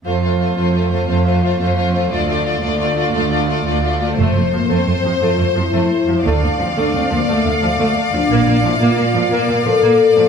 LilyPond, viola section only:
\new Staff \with { instrumentName = "Viola section" } { \time 12/8 \key f \major \tempo 4. = 117 a8 a8 a8 a8 a8 a8 a8 a8 a8 a8 a8 a8 | a8 a8 a8 a8 a8 a8 a8 a8 a8 a8 a8 a8 | a8 a8 f8 a8 a8 f8 a8 a8 f8 a8 r8 f8 | a8 a8 f8 a8 a8 f8 a8 a8 f8 a8 r8 f8 |
bes8 bes8 f8 bes8 bes8 f8 bes8 bes8 f8 bes8 r8 f8 | }